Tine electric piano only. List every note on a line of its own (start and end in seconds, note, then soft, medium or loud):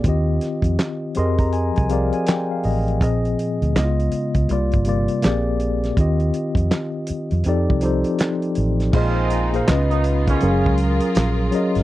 0.05 1.16 D#3 medium
0.05 1.15 C4 medium
0.05 1.17 F4 medium
0.05 1.15 G4 medium
0.05 1.18 D#5 medium
1.15 1.78 F3 medium
1.15 1.78 C4 medium
1.15 1.79 G4 medium
1.15 1.79 G#4 medium
1.15 1.79 A#4 medium
1.15 1.80 D#5 medium
1.15 1.38 C6 medium
1.39 1.52 A#5 medium
1.53 1.74 G#5 medium
1.77 1.89 G#5 medium
1.89 2.75 F3 medium
1.89 2.76 C4 medium
1.89 2.76 G4 medium
1.89 2.76 G#4 medium
1.89 2.77 A#4 medium
1.89 2.77 D5 medium
1.89 2.11 F5 medium
2.14 2.26 G#5 medium
2.28 2.49 G5 medium
2.51 2.64 F5 medium
2.65 2.99 D#5 medium
3.00 3.74 A#2 medium
3.00 3.75 F3 medium
3.00 3.75 C4 medium
3.00 3.76 G#4 medium
3.00 3.76 D#5 medium
3.74 4.37 C#3 medium
3.74 4.38 G#3 medium
3.74 4.38 B3 medium
3.74 3.84 E4 medium
3.74 4.39 D#5 medium
3.84 4.42 F4 medium
4.49 4.80 C3 medium
4.49 4.81 G3 medium
4.49 4.81 A#3 medium
4.49 4.82 F4 medium
4.49 4.82 D5 medium
4.85 5.23 C3 medium
4.85 5.23 G3 medium
4.85 5.21 A#3 medium
4.85 5.24 F4 medium
4.85 5.25 D5 medium
5.22 5.85 A#2 medium
5.22 5.85 A#3 medium
5.22 5.86 C4 medium
5.22 5.86 G4 medium
5.22 5.87 G#4 medium
5.26 5.87 D5 medium
5.97 7.09 D#3 medium
5.97 7.10 C4 medium
5.97 7.10 F4 medium
5.97 7.10 G4 medium
5.97 7.11 D#5 medium
7.45 7.76 F3 medium
7.45 7.77 C4 medium
7.45 7.77 D#4 medium
7.45 7.78 G4 medium
7.45 7.78 A4 medium
7.49 7.78 D5 medium
7.82 8.68 F3 medium
7.82 8.68 C4 medium
7.82 8.69 D#4 medium
7.82 8.69 G4 medium
7.82 8.69 A4 medium
7.82 8.70 C5 medium
8.92 9.36 A#2 medium
8.92 9.36 A#3 medium
8.92 9.37 G#4 medium
8.92 9.37 C5 medium
8.92 9.38 D#5 medium
9.53 9.67 A#2 medium
9.53 9.68 A#3 medium
9.53 9.68 G#4 medium
9.53 9.69 C5 medium
9.53 9.69 F5 medium
9.67 10.30 C#3 medium
9.67 10.30 C#4 medium
9.67 10.31 F4 medium
9.67 10.31 B4 medium
9.67 10.31 D#5 loud
10.41 11.34 F#3 medium
10.41 11.34 C#4 medium
10.41 11.34 G#4 medium
10.41 11.35 A#4 medium
10.41 11.35 F5 loud
11.51 11.82 F#3 medium
11.51 11.83 C#4 medium
11.51 11.83 G#4 medium
11.51 11.83 A#4 medium
11.51 11.83 D#5 loud